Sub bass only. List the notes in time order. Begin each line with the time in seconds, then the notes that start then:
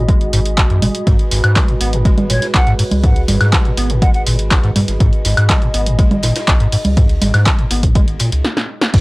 Already playing: G#1
0.33 G#1
1.07 G#1
1.32 G#2
1.81 G#1
2.54 B1
2.91 C#2
3.28 G#2
3.77 G#1
4.27 G#1
4.76 G#2
4.88 G#1
5.00 G#1
5.25 G#2
5.74 G#1
6.48 B1
6.85 C#2
7.22 G#2
7.71 G#1
8.32 C#2
8.94 G#1